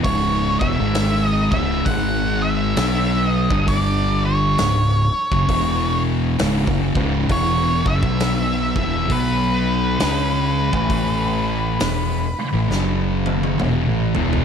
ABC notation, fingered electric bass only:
X:1
M:4/4
L:1/16
Q:"Swing" 1/4=66
K:C#m
V:1 name="Fingered electric bass" clef=bass
C,,,2 E,,, G,,,3 C,,,2 G,,,4 B,,,3 =G,,,- | =G,,,4 C,,,2 z F,,, E,,,4 C,,, F,,, C,,,2 | E,,,2 F,,, B,,,3 E,,,2 B,,,4 C,,3 A,,,- | A,,,4 E,,,2 z A,,, F,,,4 E,,, A,,, E,,,2 |]